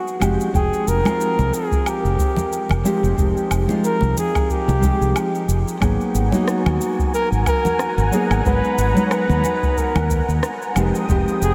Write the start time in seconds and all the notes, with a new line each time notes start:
Already playing: F#3 A#3 B3 D#4 F#4
0.08 cabasa
0.20 F1 F3 G#3 C4 D#4 G4, cabasa, low woodblock
0.41 cabasa
0.53 F1 F3 G#3 C4 D#4 G#4 G5, kick, cabasa
0.73 cabasa
0.87 F1 A#4, cabasa
1.03 F3 G#3 C4 D#4, high conga, cabasa, low woodblock
1.08 F4
1.21 cabasa
1.39 C2, high conga, cabasa
1.54 G#4, cabasa
1.72 kick, cabasa
1.86 G4, cabasa, low woodblock
2.04 F1, cabasa
2.19 kick, cabasa
2.36 high conga, low conga, cabasa
2.53 cabasa
2.69 F1, low conga, cabasa, low woodblock
2.84 F3 G#3 C4 D#4 G4, cabasa
3.03 F1, cabasa
3.17 F1 F3 G#3 C4 D#4 G4, kick, cabasa
3.37 cabasa
3.51 F1, cabasa, low woodblock
3.67 F3 G#3 C4 D#4, high conga, cabasa
3.72 F4
3.84 A#4, cabasa
4.01 C2, high conga, cabasa
4.17 G#4, low conga, cabasa
4.35 kick, cabasa, low woodblock
4.50 G4, kick, cabasa
4.68 C2, high conga, cabasa
4.80 F3 G#3 C4 D#4, kick, cabasa
4.85 G4
5.01 C2, cabasa
5.16 cabasa, low woodblock
5.35 cabasa
5.48 F1, cabasa
5.68 cabasa
5.80 G#1 F#3 A#3 B3 D#4 G#4 F#5 G#5 A#5, kick, cabasa, low woodblock
6.01 cabasa
6.14 G#1, cabasa
6.30 F#3 A#3 B3 D#4, high conga, cabasa
6.36 F#4
6.43 G#4
6.48 F#4, cross-stick, cabasa
6.66 D#2, high conga, cabasa, low woodblock
6.81 cabasa
6.99 kick, cabasa
7.14 A#4, cabasa
7.32 G#1, cabasa
7.46 A#4, kick, cabasa, low woodblock
7.65 high conga, low conga, cabasa
7.79 cross-stick, cabasa
7.97 G#1, low conga, cabasa
8.11 F#3 A#3 B3 D#4 G#4, cabasa
8.30 G#1, cabasa, low woodblock
8.44 G#1 F#3 G#3 B3 D#4 G#4 B4, kick, cabasa
8.64 cabasa
8.78 G#1, cabasa
8.94 F#3 G#3 B3 D#4, high conga, cabasa
8.99 F#4
9.06 C#5
9.11 B4, cross-stick, cabasa, low woodblock
9.29 D#2, high conga, cabasa
9.44 low conga, cabasa
9.63 kick, cabasa
9.77 A#4, kick, cabasa
9.95 D#2, high conga, cabasa, low woodblock
10.10 kick, cabasa
10.28 D#2, cabasa
10.43 cross-stick, cabasa
10.62 cabasa
10.75 F1 F3 G#3 C4 D#4 G4 G5 D#6, cabasa, low woodblock
10.95 cabasa
11.08 F1 F3 G#3 C4 D#4 G4, kick, cabasa
11.28 cabasa
11.41 F1 G#4, cabasa